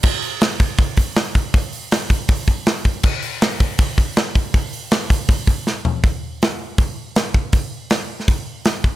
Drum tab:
CC |x---------------|----------------|x---------------|----------------|
HH |--o-o-o-o-o-o-o-|o-o-o-o-o-o-o-o-|--o-o-o-o-o-o-o-|o-o-o-o-o-o-----|
SD |----o-------o---|----o-------o---|----o-------o---|----o-------o---|
FT |----------------|----------------|----------------|--------------o-|
BD |o-----o-o-o---o-|o-----o-o-o---o-|o-----o-o-o---o-|o-----o-o-o-----|

CC |----------------|----------------|
HH |o---o---o---o---|o---o---o---o---|
SD |----o-------o---|----o--o----o---|
FT |----------------|----------------|
BD |o-------o-----o-|o-------o-----o-|